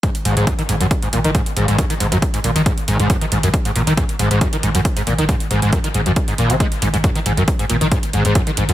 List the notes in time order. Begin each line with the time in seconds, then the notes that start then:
0.03 G#2, kick, closed hi-hat
0.15 closed hi-hat
0.25 G#1 G#2, closed hi-hat
0.37 G#1 G#2, closed hi-hat
0.47 kick, closed hi-hat
0.59 D#3, closed hi-hat
0.69 G#1 G#2, closed hi-hat
0.80 G#1 F#2, closed hi-hat
0.91 kick, closed hi-hat
1.02 G#2, closed hi-hat
1.13 G#1 A#2, closed hi-hat
1.24 G#1 D#3, closed hi-hat
1.35 G#2, kick, closed hi-hat
1.46 closed hi-hat
1.56 G#1 G#2, closed hi-hat
1.68 G#1 G#2, closed hi-hat
1.78 F#2, kick, closed hi-hat
1.90 D#3, closed hi-hat
2.00 G#1 G#2, closed hi-hat
2.12 G#1 F#2, closed hi-hat
2.22 kick, closed hi-hat
2.34 G#2, closed hi-hat
2.44 G#1 A#2, closed hi-hat
2.56 G#1 D#3, closed hi-hat
2.66 G#2, kick, closed hi-hat
2.78 closed hi-hat
2.88 G#1 G#2, closed hi-hat
2.99 G#1 G#2, closed hi-hat
3.10 F#2, kick, closed hi-hat
3.21 D#3, closed hi-hat
3.32 G#1 G#2, closed hi-hat
3.43 G#1 F#2, closed hi-hat
3.54 kick, closed hi-hat
3.65 G#2, closed hi-hat
3.75 G#1 A#2, closed hi-hat
3.87 G#1 D#3, closed hi-hat
3.97 G#2, kick, closed hi-hat
4.09 closed hi-hat
4.19 G#1 G#2, closed hi-hat
4.31 G#1 G#2, closed hi-hat
4.41 F#2, kick, closed hi-hat
4.53 D#3, closed hi-hat
4.63 G#1 G#2, closed hi-hat
4.75 G#1 F#2, closed hi-hat
4.85 kick, closed hi-hat
4.97 G#2, closed hi-hat
5.07 G#1 A#2, closed hi-hat
5.18 G#1 D#3, closed hi-hat
5.29 G#2, kick, closed hi-hat
5.40 closed hi-hat
5.51 G#1 G#2, closed hi-hat
5.62 G#1 G#2, closed hi-hat
5.73 F#2, kick, closed hi-hat
5.84 D#3, closed hi-hat
5.94 G#1 G#2, closed hi-hat
6.06 G#1 F#2, closed hi-hat
6.16 kick, closed hi-hat
6.28 G#2, closed hi-hat
6.38 G#1 A#2, closed hi-hat
6.50 G#1 C#3, closed hi-hat
6.60 G#3, kick, closed hi-hat
6.72 closed hi-hat
6.82 G#1 G#2, closed hi-hat
6.94 G#1 G#2, closed hi-hat
7.04 F#2, kick, closed hi-hat
7.15 D#3, closed hi-hat
7.26 G#1 G#2, closed hi-hat
7.37 G#1 F#2, closed hi-hat
7.48 kick, closed hi-hat
7.59 G#2, closed hi-hat
7.70 G#1 A#2, closed hi-hat
7.81 G#1 D#3, closed hi-hat
7.92 G#2, kick, closed hi-hat
8.03 closed hi-hat
8.13 G#1 G#2, closed hi-hat
8.25 G#1 G#2, closed hi-hat
8.35 F#2, kick, closed hi-hat
8.47 D#3, closed hi-hat
8.57 G#1 G#2, closed hi-hat
8.69 G#1 F#2, closed hi-hat